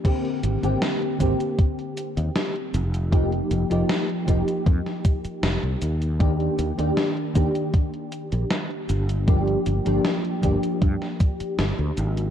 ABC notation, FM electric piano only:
X:1
M:4/4
L:1/16
Q:1/4=78
K:Ablyd
V:1 name="FM electric piano"
[D,B,CG]3 [D,B,CG]3 [D,B,CG]8 z2 | [F,B,EG]3 [F,B,EG]3 [F,B,EG]8 z2 | [E,B,DG]3 [E,B,DG]3 [E,B,DG]8- [E,B,DG]2 | [F,B,DG]3 [F,B,DG]3 [F,B,DG]8- [F,B,DG]2 |]